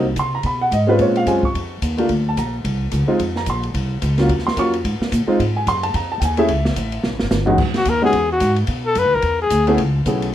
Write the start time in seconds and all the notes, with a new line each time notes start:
Already playing: C2
0.16 C3 C6, kick, hi-hat pedal, ride
0.35 A#5
0.43 B2 B5, kick, ride
0.61 F#5
0.71 G#2 D#5, kick, hi-hat pedal, ride
0.87 G#3 C4 C#4 F4 B4
0.99 A#2 C#5, kick, ride
1.15 F5, ride
1.26 F#2 G#3 C4 C#4 F4 G#5, kick, hi-hat pedal, ride
1.43 C#6, kick
1.55 F2, kick, ride
1.82 D#2, kick, hi-hat pedal, ride
1.98 A3 A#3 D4 F4, ride
2.09 D2, kick, ride
2.29 A5
2.37 A#1 A#5, kick, hi-hat pedal, ride
2.64 C2, kick, ride
2.91 C#2, kick, hi-hat pedal, ride
3.08 G#3 C4 D#4 F4
3.19 F2, kick, ride
3.36 A#5, snare
3.46 A#1 C6, kick, hi-hat pedal, ride
3.63 ride
3.74 C2, kick, ride
4.02 C#2, kick, hi-hat pedal, ride
4.18 F#3 A#3 C#4 F4, snare, ride
4.29 D#2, kick, ride
4.39 snare
4.47 C6, snare
4.57 F2 F#3 A#3 C#4 F4 C#6, kick, hi-hat pedal, ride
4.74 ride
4.84 G#2, kick, ride
5.00 muted upright bass stroke, snare
5.12 A#2, kick, hi-hat pedal, ride
5.27 G#3 C4 D#4 F4, muted upright bass stroke
5.39 G#2, kick, ride
5.56 G#5
5.67 F#2 C6, kick, hi-hat pedal, ride
5.83 A5, ride
5.94 F2 A#5, kick, ride
6.12 A5
6.20 D#2 G5, kick, hi-hat pedal, ride
6.25 G#5
6.37 A3 C#4 E4 G#4 E5, ride
6.48 C#2, kick, ride
6.65 snare
6.76 A1, kick, hi-hat pedal, ride
6.92 ride
7.03 B1, snare
7.12 A1
7.19 G1, snare
7.31 G1, snare, hi-hat pedal
7.46 E2 G#3 C#4 D#4 F#4, floor tom
7.58 E2, kick, crash
7.74 F#4, snare, ride
7.85 D#2, kick, hi-hat pedal, ride
7.89 A#4
8.02 G#3 B3 C#4 D#4 F#4 G#4
8.13 E2, kick, ride
8.32 F#4
8.40 G#2, kick, hi-hat pedal, ride
8.56 ride
8.67 B2, kick, ride
8.86 A4
8.95 F#2 B4, kick, hi-hat pedal, ride
9.05 D2
9.15 B1 A#4
9.22 E2, kick, ride
9.42 G#4
9.50 D2, kick, hi-hat pedal, ride
9.67 A3 B3 C#4 E4 G#4, ride
9.78 C#2, kick, ride
10.06 B1 A3 B3 C#4 E4 G#4, kick, hi-hat pedal, ride
10.22 ride